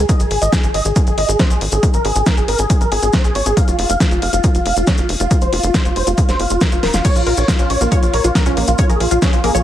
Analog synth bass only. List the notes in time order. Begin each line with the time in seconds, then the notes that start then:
0.20 G#1
0.31 G#1
0.42 G#1
0.63 G#1
0.74 G#1
0.85 G#1
1.07 G#1
1.18 G#1
1.28 G#1
1.50 A#1
1.61 G#1
1.72 G#1
1.94 G#1
2.05 G#1
2.15 G#1
2.37 G#1
2.48 G#1
2.59 G#1
2.81 G#1
2.92 G#1
3.02 G#1
3.24 A#1
3.35 G#1
3.46 G#1
3.68 F1
3.79 F1
3.89 F1
4.11 F1
4.22 F1
4.33 F1
4.55 F1
4.66 F1
4.76 F1
4.98 F#1
5.09 F1
5.20 F1
5.42 F1
5.53 F1
5.63 F1
5.85 F1
5.96 F1
6.07 F1
6.29 F1
6.40 F#1
6.50 F1
6.72 F1
6.83 D#1
6.94 F1
7.16 A#1
7.26 A#1
7.37 A#1
7.59 A#1
7.70 A#1
7.81 A#1
8.03 A#1
8.13 A#1
8.24 A#1
8.46 C2
8.57 A#1
8.68 A#1
8.89 A#1
9.00 A#1
9.11 A#1
9.33 A#1
9.44 A#1
9.55 A#1